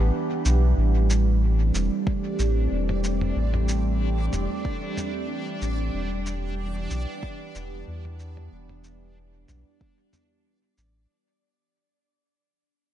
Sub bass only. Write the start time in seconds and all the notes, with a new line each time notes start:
0.00 A1
0.45 B1
0.77 A1
1.75 E1
2.39 A1
2.71 E1
3.36 A1
4.33 E1
5.62 A1
5.94 E1
6.91 B1
7.55 E1
7.88 E2
8.52 E1
9.49 B1
10.78 A1